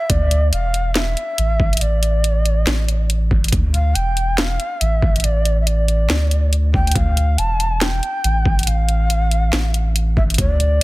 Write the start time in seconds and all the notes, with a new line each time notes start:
Already playing: E5
0.10 D2 D5, kick, closed hi-hat
0.31 closed hi-hat
0.52 E1 F5, closed hi-hat
0.74 closed hi-hat
0.95 E5, snare, clap, closed hi-hat
1.17 closed hi-hat
1.38 A1, closed hi-hat
1.60 kick
1.73 closed hi-hat
1.77 closed hi-hat
1.81 D5, closed hi-hat
2.03 closed hi-hat
2.24 closed hi-hat
2.46 closed hi-hat
2.67 A1, snare, clap, closed hi-hat
2.88 closed hi-hat
3.10 closed hi-hat
3.31 kick
3.44 closed hi-hat
3.48 closed hi-hat
3.52 D2, kick, closed hi-hat
3.74 F5, closed hi-hat
3.95 E1 G5, closed hi-hat
4.17 closed hi-hat
4.38 F5, snare, clap, closed hi-hat
4.60 closed hi-hat
4.81 A1 E5, closed hi-hat
5.02 kick
5.16 closed hi-hat
5.20 D5, closed hi-hat
5.24 closed hi-hat
5.45 closed hi-hat
5.61 E5
5.67 D5, closed hi-hat
5.88 closed hi-hat
6.10 D2, snare, clap, closed hi-hat
6.31 closed hi-hat
6.53 closed hi-hat
6.74 G5, kick
6.87 closed hi-hat
6.92 D2 F5, kick, closed hi-hat
6.96 closed hi-hat
7.17 closed hi-hat
7.38 E1 A5, closed hi-hat
7.60 closed hi-hat
7.81 G5, snare, clap, closed hi-hat
8.03 closed hi-hat
8.24 A1, closed hi-hat
8.46 kick
8.59 closed hi-hat
8.63 F5, closed hi-hat
8.67 closed hi-hat
8.89 closed hi-hat
9.10 closed hi-hat
9.31 closed hi-hat
9.53 A1, snare, clap, closed hi-hat
9.74 closed hi-hat
9.96 closed hi-hat
10.17 E5, kick
10.30 closed hi-hat
10.34 D2, kick, closed hi-hat
10.38 D5, closed hi-hat
10.60 closed hi-hat